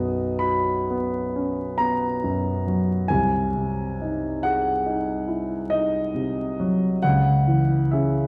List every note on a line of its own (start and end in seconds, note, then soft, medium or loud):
0.00 3.04 B1 soft
0.00 0.20 F#2 soft
0.00 0.71 B3 soft
0.00 0.40 D#5 medium
0.39 1.18 F#4 soft
0.39 1.79 B5 medium
0.90 1.62 B3 soft
1.36 1.80 C#4 soft
1.78 2.49 B3 soft
1.78 3.09 A#5 medium
2.24 2.93 F#2 soft
2.67 3.11 F#3 soft
3.08 6.99 C2 medium
3.08 4.43 G#5 medium
3.55 4.27 C3 soft
4.02 4.70 D#4 soft
4.43 5.11 G#4 soft
4.43 5.70 F#5 medium
4.86 5.53 D#4 soft
5.28 5.71 E4 soft
5.70 6.41 D#4 soft
5.70 7.03 D#5 medium
6.14 6.85 C3 soft
6.60 7.03 F#3 soft
7.02 8.27 C#2 medium
7.02 7.92 F#5 medium
7.47 8.20 E3 soft
7.91 8.27 C#4 soft
7.91 8.27 G#4 soft
7.91 8.27 E5 medium